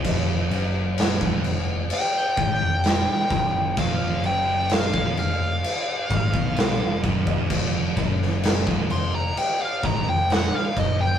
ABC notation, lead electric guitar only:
X:1
M:4/4
L:1/16
Q:1/4=64
K:Ablyd
V:1 name="Lead electric guitar"
z8 g8 | f2 g2 f2 f8 z2 | z6 c' b g f b g _g f e =g |]